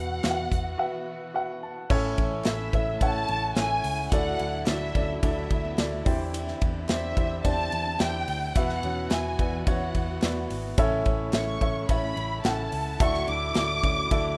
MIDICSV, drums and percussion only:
0, 0, Header, 1, 2, 480
1, 0, Start_track
1, 0, Key_signature, 3, "major"
1, 0, Tempo, 555042
1, 1646, Time_signature, 4, 2, 24, 8
1, 12427, End_track
2, 0, Start_track
2, 0, Title_t, "Drums"
2, 201, Note_on_c, 9, 42, 70
2, 206, Note_on_c, 9, 38, 119
2, 288, Note_off_c, 9, 42, 0
2, 293, Note_off_c, 9, 38, 0
2, 446, Note_on_c, 9, 36, 82
2, 450, Note_on_c, 9, 42, 58
2, 533, Note_off_c, 9, 36, 0
2, 536, Note_off_c, 9, 42, 0
2, 1644, Note_on_c, 9, 36, 110
2, 1644, Note_on_c, 9, 49, 97
2, 1731, Note_off_c, 9, 36, 0
2, 1731, Note_off_c, 9, 49, 0
2, 1883, Note_on_c, 9, 51, 52
2, 1887, Note_on_c, 9, 36, 92
2, 1970, Note_off_c, 9, 51, 0
2, 1973, Note_off_c, 9, 36, 0
2, 2114, Note_on_c, 9, 39, 87
2, 2118, Note_on_c, 9, 51, 70
2, 2122, Note_on_c, 9, 38, 127
2, 2201, Note_off_c, 9, 39, 0
2, 2204, Note_off_c, 9, 51, 0
2, 2209, Note_off_c, 9, 38, 0
2, 2363, Note_on_c, 9, 36, 93
2, 2367, Note_on_c, 9, 51, 45
2, 2450, Note_off_c, 9, 36, 0
2, 2454, Note_off_c, 9, 51, 0
2, 2603, Note_on_c, 9, 36, 89
2, 2603, Note_on_c, 9, 51, 82
2, 2689, Note_off_c, 9, 36, 0
2, 2689, Note_off_c, 9, 51, 0
2, 2840, Note_on_c, 9, 51, 50
2, 2926, Note_off_c, 9, 51, 0
2, 3082, Note_on_c, 9, 39, 66
2, 3083, Note_on_c, 9, 38, 127
2, 3083, Note_on_c, 9, 51, 75
2, 3168, Note_off_c, 9, 39, 0
2, 3169, Note_off_c, 9, 38, 0
2, 3169, Note_off_c, 9, 51, 0
2, 3321, Note_on_c, 9, 46, 67
2, 3321, Note_on_c, 9, 51, 47
2, 3407, Note_off_c, 9, 46, 0
2, 3407, Note_off_c, 9, 51, 0
2, 3560, Note_on_c, 9, 44, 64
2, 3561, Note_on_c, 9, 51, 87
2, 3562, Note_on_c, 9, 36, 112
2, 3647, Note_off_c, 9, 44, 0
2, 3647, Note_off_c, 9, 51, 0
2, 3649, Note_off_c, 9, 36, 0
2, 3799, Note_on_c, 9, 51, 55
2, 3885, Note_off_c, 9, 51, 0
2, 4033, Note_on_c, 9, 39, 89
2, 4033, Note_on_c, 9, 51, 70
2, 4038, Note_on_c, 9, 38, 127
2, 4119, Note_off_c, 9, 51, 0
2, 4120, Note_off_c, 9, 39, 0
2, 4124, Note_off_c, 9, 38, 0
2, 4281, Note_on_c, 9, 36, 87
2, 4282, Note_on_c, 9, 51, 49
2, 4368, Note_off_c, 9, 36, 0
2, 4368, Note_off_c, 9, 51, 0
2, 4521, Note_on_c, 9, 51, 82
2, 4522, Note_on_c, 9, 36, 91
2, 4608, Note_off_c, 9, 36, 0
2, 4608, Note_off_c, 9, 51, 0
2, 4760, Note_on_c, 9, 51, 57
2, 4762, Note_on_c, 9, 36, 83
2, 4846, Note_off_c, 9, 51, 0
2, 4848, Note_off_c, 9, 36, 0
2, 4999, Note_on_c, 9, 39, 64
2, 5000, Note_on_c, 9, 51, 80
2, 5001, Note_on_c, 9, 38, 127
2, 5085, Note_off_c, 9, 39, 0
2, 5087, Note_off_c, 9, 38, 0
2, 5087, Note_off_c, 9, 51, 0
2, 5241, Note_on_c, 9, 46, 64
2, 5241, Note_on_c, 9, 51, 49
2, 5242, Note_on_c, 9, 36, 105
2, 5327, Note_off_c, 9, 46, 0
2, 5327, Note_off_c, 9, 51, 0
2, 5328, Note_off_c, 9, 36, 0
2, 5484, Note_on_c, 9, 44, 67
2, 5484, Note_on_c, 9, 51, 96
2, 5570, Note_off_c, 9, 44, 0
2, 5571, Note_off_c, 9, 51, 0
2, 5602, Note_on_c, 9, 38, 29
2, 5689, Note_off_c, 9, 38, 0
2, 5720, Note_on_c, 9, 51, 55
2, 5723, Note_on_c, 9, 36, 96
2, 5806, Note_off_c, 9, 51, 0
2, 5810, Note_off_c, 9, 36, 0
2, 5956, Note_on_c, 9, 39, 88
2, 5957, Note_on_c, 9, 51, 69
2, 5962, Note_on_c, 9, 38, 116
2, 6043, Note_off_c, 9, 39, 0
2, 6044, Note_off_c, 9, 51, 0
2, 6048, Note_off_c, 9, 38, 0
2, 6200, Note_on_c, 9, 36, 90
2, 6204, Note_on_c, 9, 51, 52
2, 6286, Note_off_c, 9, 36, 0
2, 6290, Note_off_c, 9, 51, 0
2, 6440, Note_on_c, 9, 36, 88
2, 6440, Note_on_c, 9, 51, 85
2, 6526, Note_off_c, 9, 36, 0
2, 6526, Note_off_c, 9, 51, 0
2, 6677, Note_on_c, 9, 51, 61
2, 6764, Note_off_c, 9, 51, 0
2, 6919, Note_on_c, 9, 39, 70
2, 6919, Note_on_c, 9, 51, 78
2, 6920, Note_on_c, 9, 38, 127
2, 7005, Note_off_c, 9, 39, 0
2, 7006, Note_off_c, 9, 38, 0
2, 7006, Note_off_c, 9, 51, 0
2, 7158, Note_on_c, 9, 46, 71
2, 7158, Note_on_c, 9, 51, 49
2, 7245, Note_off_c, 9, 46, 0
2, 7245, Note_off_c, 9, 51, 0
2, 7398, Note_on_c, 9, 44, 71
2, 7398, Note_on_c, 9, 51, 91
2, 7400, Note_on_c, 9, 36, 106
2, 7484, Note_off_c, 9, 44, 0
2, 7485, Note_off_c, 9, 51, 0
2, 7486, Note_off_c, 9, 36, 0
2, 7518, Note_on_c, 9, 38, 29
2, 7605, Note_off_c, 9, 38, 0
2, 7637, Note_on_c, 9, 51, 54
2, 7723, Note_off_c, 9, 51, 0
2, 7872, Note_on_c, 9, 51, 66
2, 7877, Note_on_c, 9, 38, 127
2, 7877, Note_on_c, 9, 39, 84
2, 7959, Note_off_c, 9, 51, 0
2, 7964, Note_off_c, 9, 38, 0
2, 7964, Note_off_c, 9, 39, 0
2, 8121, Note_on_c, 9, 36, 91
2, 8122, Note_on_c, 9, 51, 54
2, 8207, Note_off_c, 9, 36, 0
2, 8209, Note_off_c, 9, 51, 0
2, 8361, Note_on_c, 9, 51, 79
2, 8362, Note_on_c, 9, 36, 100
2, 8447, Note_off_c, 9, 51, 0
2, 8448, Note_off_c, 9, 36, 0
2, 8601, Note_on_c, 9, 51, 55
2, 8603, Note_on_c, 9, 36, 74
2, 8688, Note_off_c, 9, 51, 0
2, 8689, Note_off_c, 9, 36, 0
2, 8839, Note_on_c, 9, 39, 72
2, 8843, Note_on_c, 9, 38, 127
2, 8843, Note_on_c, 9, 51, 75
2, 8925, Note_off_c, 9, 39, 0
2, 8929, Note_off_c, 9, 51, 0
2, 8930, Note_off_c, 9, 38, 0
2, 9083, Note_on_c, 9, 46, 68
2, 9083, Note_on_c, 9, 51, 54
2, 9170, Note_off_c, 9, 46, 0
2, 9170, Note_off_c, 9, 51, 0
2, 9320, Note_on_c, 9, 44, 64
2, 9320, Note_on_c, 9, 51, 92
2, 9322, Note_on_c, 9, 36, 127
2, 9406, Note_off_c, 9, 44, 0
2, 9407, Note_off_c, 9, 51, 0
2, 9408, Note_off_c, 9, 36, 0
2, 9560, Note_on_c, 9, 51, 59
2, 9565, Note_on_c, 9, 36, 93
2, 9646, Note_off_c, 9, 51, 0
2, 9651, Note_off_c, 9, 36, 0
2, 9796, Note_on_c, 9, 51, 68
2, 9799, Note_on_c, 9, 39, 91
2, 9801, Note_on_c, 9, 38, 121
2, 9882, Note_off_c, 9, 51, 0
2, 9886, Note_off_c, 9, 39, 0
2, 9887, Note_off_c, 9, 38, 0
2, 10042, Note_on_c, 9, 36, 85
2, 10045, Note_on_c, 9, 51, 50
2, 10129, Note_off_c, 9, 36, 0
2, 10132, Note_off_c, 9, 51, 0
2, 10282, Note_on_c, 9, 51, 91
2, 10283, Note_on_c, 9, 36, 99
2, 10368, Note_off_c, 9, 51, 0
2, 10369, Note_off_c, 9, 36, 0
2, 10524, Note_on_c, 9, 51, 49
2, 10611, Note_off_c, 9, 51, 0
2, 10765, Note_on_c, 9, 38, 127
2, 10765, Note_on_c, 9, 39, 76
2, 10765, Note_on_c, 9, 51, 76
2, 10851, Note_off_c, 9, 51, 0
2, 10852, Note_off_c, 9, 38, 0
2, 10852, Note_off_c, 9, 39, 0
2, 11001, Note_on_c, 9, 46, 63
2, 11001, Note_on_c, 9, 51, 51
2, 11088, Note_off_c, 9, 46, 0
2, 11088, Note_off_c, 9, 51, 0
2, 11244, Note_on_c, 9, 36, 122
2, 11245, Note_on_c, 9, 44, 63
2, 11246, Note_on_c, 9, 51, 88
2, 11331, Note_off_c, 9, 36, 0
2, 11332, Note_off_c, 9, 44, 0
2, 11332, Note_off_c, 9, 51, 0
2, 11364, Note_on_c, 9, 38, 27
2, 11450, Note_off_c, 9, 38, 0
2, 11481, Note_on_c, 9, 51, 51
2, 11568, Note_off_c, 9, 51, 0
2, 11717, Note_on_c, 9, 51, 69
2, 11721, Note_on_c, 9, 39, 88
2, 11722, Note_on_c, 9, 38, 126
2, 11804, Note_off_c, 9, 51, 0
2, 11807, Note_off_c, 9, 39, 0
2, 11808, Note_off_c, 9, 38, 0
2, 11964, Note_on_c, 9, 36, 88
2, 11967, Note_on_c, 9, 51, 56
2, 12051, Note_off_c, 9, 36, 0
2, 12054, Note_off_c, 9, 51, 0
2, 12203, Note_on_c, 9, 51, 88
2, 12205, Note_on_c, 9, 36, 94
2, 12289, Note_off_c, 9, 51, 0
2, 12291, Note_off_c, 9, 36, 0
2, 12427, End_track
0, 0, End_of_file